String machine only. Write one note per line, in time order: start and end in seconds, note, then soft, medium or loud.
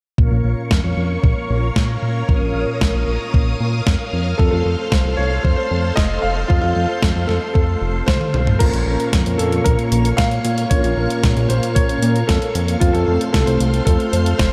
0.18 4.35 A#4 medium
0.18 4.35 C#5 medium
0.18 8.56 F5 medium
0.18 2.27 C#6 medium
2.29 4.37 D#6 medium
4.39 8.56 A4 medium
4.39 8.56 C5 medium
4.39 8.56 C6 medium
8.60 12.77 A#3 medium
8.60 12.77 C#5 medium
8.60 14.53 F5 medium
8.60 12.77 C#6 medium
12.81 14.53 A4 medium
12.81 14.53 C5 medium
12.81 14.53 C6 medium